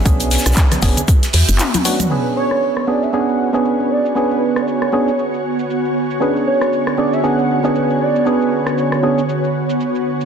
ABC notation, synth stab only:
X:1
M:4/4
L:1/16
Q:"Swing 16ths" 1/4=117
K:Bdor
V:1 name="Synth stab"
[B,CDG]6 [B,CDG] z6 z [B,CDF]2 | [B,CDG]6 [B,CDG]2 [B,CDG]3 [B,CDG]4- [B,CDG] | [B,CDG]6 [B,CDG] z8 z | [B,CDG]6 [B,CDG]2 [B,CDG]3 [B,CDG]4- [B,CDG] |
[B,CDG]6 [B,CDG] z8 z |]